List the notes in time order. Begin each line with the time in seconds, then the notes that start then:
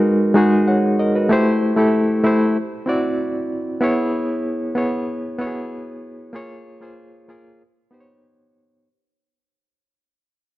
Already playing: G#3 D#4 F#4 A#4 B4
0.34 G#3 D#4 F#4 G#4
0.68 C#5 F#5
0.99 A#4 D#5
1.15 F#4 B4
1.29 A3 E4 G4 C5
1.76 A3 E4 G4 A4
2.24 A3 E4 G4 C5
2.86 C4 E4 F#4 D5
3.81 B3 E4 G#4 C#5
4.75 B3 E4 G#4 C#5
5.38 B3 E4 F#4 C#5
5.47 G#4
6.33 A#3 F4 G#4 C#5
6.80 A#3 F4 G#4 C5
7.28 A#3 F4 G#4 A#4
7.91 B3 D#4 G4 C5
8.00 C#5